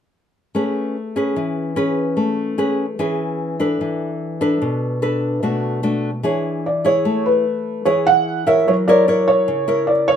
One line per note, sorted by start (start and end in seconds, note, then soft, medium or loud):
0.55 1.35 A3 soft
0.55 0.96 C#4 soft
0.55 0.96 G#4 soft
0.55 0.96 B4 soft
1.16 1.74 C#4 soft
1.16 1.74 G#4 soft
1.16 1.74 B4 medium
1.36 2.16 E3 medium
1.76 2.55 C#4 medium
1.76 2.55 G#4 soft
1.76 2.55 B4 medium
2.17 2.97 A3 soft
2.58 2.85 C#4 soft
2.58 2.85 G#4 medium
2.58 2.85 B4 soft
2.99 3.79 E3 medium
2.99 3.57 C#4 soft
2.99 3.57 G#4 soft
2.99 3.58 B4 soft
3.60 4.38 D4 medium
3.60 4.38 A4 soft
3.60 4.38 B4 medium
3.81 4.60 E3 soft
4.41 4.99 D4 medium
4.41 4.99 A4 medium
4.41 4.99 B4 medium
4.62 5.41 B2 medium
5.02 5.41 D4 soft
5.02 5.41 A4 medium
5.02 5.42 B4 medium
5.43 6.22 B2 soft
5.43 5.80 A3 soft
5.43 5.80 D4 soft
5.43 5.81 F#4 soft
5.83 6.10 A3 soft
5.83 6.10 D4 medium
5.83 6.10 F#4 medium
6.23 7.03 E3 medium
6.23 6.64 D4 soft
6.23 6.65 G#4 soft
6.23 6.65 C#5 medium
6.66 6.86 D5 medium
6.85 7.44 E4 medium
6.85 7.44 G#4 medium
6.85 7.45 C#5 medium
6.85 7.27 C#5 medium
7.05 7.84 A3 medium
7.26 7.88 B4 medium
7.85 8.65 E3 medium
7.85 8.44 E4 soft
7.85 8.44 G#4 soft
7.85 8.05 C#5 medium
7.85 8.44 C#5 soft
8.07 8.49 F#5 medium
8.47 8.84 E4 medium
8.47 8.85 A#4 medium
8.47 8.85 C#5 medium
8.47 8.68 E5 medium
8.68 9.47 F#3 medium
8.68 8.73 C#5 medium
8.88 9.05 E4 medium
8.88 9.06 A#4 medium
8.88 9.06 C#5 medium
8.88 9.30 D5 medium
9.08 9.66 E4 soft
9.08 9.66 A#4 medium
9.08 9.66 C#5 medium
9.28 9.91 C#5 medium
9.48 10.16 C#3 medium
9.68 10.16 E4 medium
9.68 10.16 A#4 medium
9.68 10.16 C#5 medium
9.87 10.07 D5 medium
10.08 10.16 C#5 loud